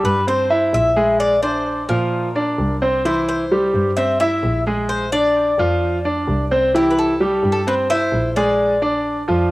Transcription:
Already playing: grand piano G3 G4
0.04 double bass G2, cuban tres B4
0.27 grand piano C4 C5, cuban tres C5
0.50 grand piano E4 E5
0.73 double bass A#1, cuban tres E5
0.96 grand piano G#3 G#4
1.20 cuban tres D5
1.43 grand piano D4 D5, cuban tres C5
1.89 double bass A#2, grand piano F3 F4, cuban tres A#4
2.36 grand piano D4 D5
2.58 double bass C2
2.82 grand piano C4 C5
3.05 grand piano E3 E4, cuban tres C5
3.29 cuban tres C5
3.51 grand piano G3 G4
3.73 double bass G2
3.97 grand piano C4 C5, cuban tres E5
4.20 grand piano E4 E5, cuban tres E5
4.43 double bass A#1
4.67 grand piano G#3 G#4
4.89 cuban tres C5
5.12 grand piano D4 D5, cuban tres D5
5.58 double bass F2, grand piano F3 F4
6.05 grand piano D4 D5
6.27 double bass C2
6.51 grand piano C4 C5
6.74 grand piano E3 E4, cuban tres G4
6.90 cuban tres B4
6.99 cuban tres A4
7.20 grand piano G3 G4
7.43 double bass G2
7.52 cuban tres A4
7.67 grand piano C4 C5, cuban tres B4
7.90 grand piano E4 E5, cuban tres C5
8.12 double bass A#1
8.36 grand piano G#3 G#4, cuban tres D5
8.82 grand piano D4 D5
9.28 double bass F2, grand piano F3 F4

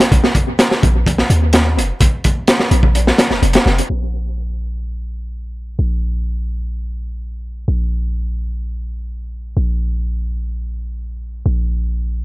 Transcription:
0.00 snare, closed hi-hat
0.12 808-style bass A#1, kick, closed hi-hat
0.24 snare
0.35 kick, closed hi-hat
0.59 snare, closed hi-hat
0.71 snare
0.83 808-style bass A#1, kick, closed hi-hat
1.07 kick, closed hi-hat
1.18 snare
1.30 808-style bass D#2, closed hi-hat
1.53 snare, closed hi-hat
1.77 808-style bass F1, closed hi-hat
2.01 808-style bass A#1, kick, closed hi-hat
2.24 kick, closed hi-hat
2.48 snare, closed hi-hat
2.60 snare
2.71 808-style bass A#1, closed hi-hat
2.83 kick
2.95 closed hi-hat
3.07 snare
3.18 snare, closed hi-hat
3.30 808-style bass F1, snare
3.42 808-style bass F1, closed hi-hat
3.53 snare, closed hi-hat
3.66 808-style bass F1, snare
3.78 closed hi-hat
3.90 808-style bass A#1
5.79 808-style bass A#1
7.68 808-style bass A#1
9.57 808-style bass A#1
11.46 808-style bass A#1

